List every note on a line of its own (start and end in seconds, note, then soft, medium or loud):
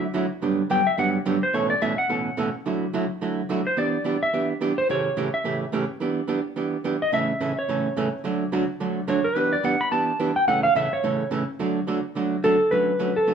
0.14 0.25 D3 medium
0.14 0.25 F#3 medium
0.14 0.25 A3 medium
0.14 0.25 E4 medium
0.14 0.25 F#4 medium
0.42 0.61 G2 medium
0.42 0.61 D3 medium
0.42 0.61 F#3 medium
0.42 0.61 B3 medium
0.42 0.62 D4 medium
0.42 0.62 G4 medium
0.70 0.81 G2 medium
0.70 0.81 D3 medium
0.70 0.81 F#3 medium
0.70 0.81 B3 medium
0.70 0.81 D4 medium
0.70 0.81 G4 medium
0.70 0.87 G5 loud
0.87 0.98 E5 medium
0.98 1.17 G2 medium
0.98 1.17 D3 medium
0.98 1.17 F#3 medium
0.98 1.17 B3 medium
0.98 1.17 D4 medium
0.98 1.18 G4 medium
0.98 1.09 F#5 medium
1.25 1.36 G2 medium
1.25 1.37 D3 medium
1.25 1.37 F#3 medium
1.25 1.37 B3 medium
1.25 1.37 D4 medium
1.25 1.37 G4 medium
1.43 1.54 C5 medium
1.54 1.73 A2 medium
1.54 1.73 B2 medium
1.54 1.73 E3 medium
1.54 1.73 A3 medium
1.54 1.73 C#4 medium
1.54 1.74 A4 medium
1.54 1.70 C#5 medium
1.70 1.81 D5 medium
1.81 1.92 A2 medium
1.81 1.92 B2 medium
1.81 1.93 E3 medium
1.81 1.93 A3 medium
1.81 1.93 C#4 medium
1.81 1.93 A4 medium
1.81 1.98 E5 medium
1.98 2.61 F#5 loud
2.09 2.29 A2 medium
2.09 2.29 B2 medium
2.09 2.29 E3 medium
2.09 2.29 A3 medium
2.09 2.29 C#4 medium
2.09 2.29 A4 medium
2.37 2.48 A2 medium
2.37 2.48 B2 medium
2.37 2.48 E3 medium
2.37 2.48 A3 medium
2.37 2.49 C#4 medium
2.37 2.49 A4 medium
2.66 2.85 D3 medium
2.66 2.85 F#3 medium
2.66 2.85 A3 medium
2.66 2.85 E4 medium
2.66 2.85 F#4 medium
2.94 3.04 D3 medium
2.94 3.04 F#3 medium
2.94 3.05 A3 medium
2.94 3.05 E4 medium
2.94 3.05 F#4 medium
3.21 3.40 D3 medium
3.21 3.41 F#3 medium
3.21 3.41 A3 medium
3.21 3.41 E4 medium
3.21 3.41 F#4 medium
3.49 3.60 D3 medium
3.49 3.60 F#3 medium
3.49 3.60 A3 medium
3.49 3.60 E4 medium
3.49 3.61 F#4 medium
3.67 3.77 C5 medium
3.77 3.96 E3 medium
3.77 3.96 B3 medium
3.77 3.97 D4 medium
3.77 3.97 G4 medium
3.77 4.19 D5 medium
4.04 4.16 E3 medium
4.04 4.16 B3 medium
4.04 4.16 D4 medium
4.04 4.16 G4 medium
4.23 4.48 E5 loud
4.33 4.52 E3 medium
4.33 4.52 B3 medium
4.33 4.53 D4 medium
4.33 4.53 G4 medium
4.61 4.72 E3 medium
4.61 4.72 B3 medium
4.61 4.72 D4 medium
4.61 4.72 G4 medium
4.78 4.89 C5 loud
4.89 5.08 A2 medium
4.89 5.08 C#3 medium
4.89 5.08 E3 medium
4.89 5.09 A3 medium
4.89 5.09 C#4 medium
4.89 5.09 G4 medium
4.89 5.31 C#5 medium
5.17 5.28 A2 medium
5.17 5.28 C#3 medium
5.17 5.28 E3 medium
5.17 5.28 A3 medium
5.17 5.28 C#4 medium
5.17 5.28 G4 medium
5.34 5.60 E5 medium
5.44 5.64 A2 medium
5.44 5.64 C#3 medium
5.44 5.64 E3 medium
5.44 5.64 A3 medium
5.44 5.64 C#4 medium
5.44 5.64 G4 medium
5.72 5.83 A2 medium
5.72 5.84 C#3 medium
5.72 5.84 E3 medium
5.72 5.84 A3 medium
5.72 5.84 C#4 medium
5.72 5.84 G4 medium
6.00 6.20 E3 medium
6.00 6.20 B3 medium
6.00 6.20 D4 medium
6.00 6.20 G4 medium
6.28 6.39 E3 medium
6.28 6.39 B3 medium
6.28 6.39 D4 medium
6.28 6.40 G4 medium
6.56 6.76 E3 medium
6.56 6.76 B3 medium
6.56 6.76 D4 medium
6.56 6.76 G4 medium
6.84 6.95 E3 medium
6.84 6.95 B3 medium
6.84 6.96 D4 medium
6.84 6.96 G4 medium
7.02 7.13 D#5 medium
7.12 7.31 A2 medium
7.12 7.32 C#3 medium
7.12 7.32 E3 medium
7.12 7.32 A3 medium
7.12 7.32 C#4 medium
7.12 7.32 A4 medium
7.12 7.58 E5 loud
7.41 7.51 A2 medium
7.41 7.51 C#3 medium
7.41 7.52 E3 medium
7.41 7.52 A3 medium
7.41 7.52 C#4 medium
7.41 7.52 A4 medium
7.59 8.21 C#5 medium
7.69 7.88 A2 medium
7.69 7.88 C#3 medium
7.69 7.88 E3 medium
7.69 7.88 A3 medium
7.69 7.88 C#4 medium
7.69 7.88 A4 medium
7.97 8.07 A2 medium
7.97 8.07 C#3 medium
7.97 8.08 E3 medium
7.97 8.08 A3 medium
7.97 8.08 C#4 medium
7.97 8.08 A4 medium
8.24 8.43 D3 medium
8.24 8.44 F#3 medium
8.24 8.44 A3 medium
8.24 8.44 D4 medium
8.24 8.44 F#4 medium
8.52 8.63 D3 medium
8.52 8.63 F#3 medium
8.52 8.63 A3 medium
8.52 8.63 D4 medium
8.52 8.64 F#4 medium
8.80 8.99 D3 medium
8.80 9.00 F#3 medium
8.80 9.00 A3 medium
8.80 9.00 D4 medium
8.80 9.00 F#4 medium
9.08 9.19 D3 medium
9.08 9.19 F#3 medium
9.08 9.19 A3 medium
9.08 9.19 D4 medium
9.08 9.19 F#4 medium
9.08 9.25 C#5 medium
9.24 9.36 A#4 medium
9.35 9.55 E3 medium
9.35 9.55 B3 medium
9.35 9.55 D4 medium
9.35 9.56 G4 medium
9.35 9.52 B4 medium
9.53 9.64 D5 medium
9.63 9.75 E3 medium
9.63 9.75 B3 medium
9.63 9.75 D4 medium
9.63 9.75 G4 medium
9.63 9.81 F#5 medium
9.81 9.91 B5 loud
9.91 10.11 E3 medium
9.91 10.11 B3 medium
9.91 10.11 D4 medium
9.91 10.12 G4 medium
9.91 10.33 A5 medium
10.20 10.31 E3 medium
10.20 10.31 B3 medium
10.20 10.31 D4 medium
10.20 10.31 G4 medium
10.36 10.47 G5 loud
10.47 10.67 A2 medium
10.47 10.67 C#3 medium
10.47 10.67 E3 medium
10.47 10.67 A3 medium
10.47 10.68 C#4 medium
10.47 10.67 A4 medium
10.47 10.63 F#5 medium
10.63 10.75 F5 loud
10.75 10.86 A2 medium
10.75 10.87 C#3 medium
10.75 10.87 E3 medium
10.75 10.87 A3 medium
10.75 10.87 C#4 medium
10.75 10.87 A4 medium
10.75 10.92 E5 medium
10.93 11.29 C#5 medium
11.03 11.23 A2 medium
11.03 11.23 C#3 medium
11.03 11.23 E3 medium
11.03 11.23 A3 medium
11.03 11.23 C#4 medium
11.03 11.23 A4 medium
11.31 11.42 A2 medium
11.31 11.42 C#3 medium
11.31 11.42 E3 medium
11.31 11.43 A3 medium
11.31 11.43 C#4 medium
11.31 11.43 A4 medium
11.59 11.79 D3 medium
11.59 11.79 F#3 medium
11.59 11.79 A3 medium
11.59 11.79 D4 medium
11.59 11.79 F#4 medium
11.87 11.98 D3 medium
11.87 11.98 F#3 medium
11.87 11.99 A3 medium
11.87 11.99 D4 medium
11.87 11.99 F#4 medium
12.15 12.35 D3 medium
12.15 12.35 F#3 medium
12.15 12.35 A3 medium
12.15 12.35 D4 medium
12.15 12.35 F#4 medium
12.44 12.54 D3 medium
12.44 12.54 F#3 medium
12.44 12.55 A3 medium
12.44 12.55 D4 medium
12.44 12.55 F#4 medium
12.44 12.73 A4 medium
12.71 12.91 D3 medium
12.71 12.91 F#3 medium
12.71 12.91 A3 medium
12.71 12.91 C#4 medium
12.71 12.92 F#4 medium
12.71 13.17 B4 medium
12.99 13.10 D3 medium
12.99 13.10 F#3 medium
12.99 13.10 A3 medium
12.99 13.11 C#4 medium
12.99 13.11 F#4 medium
13.16 13.34 A4 medium
13.27 13.34 D3 medium
13.27 13.34 F#3 medium
13.27 13.34 A3 medium
13.27 13.34 C#4 medium
13.27 13.34 F#4 medium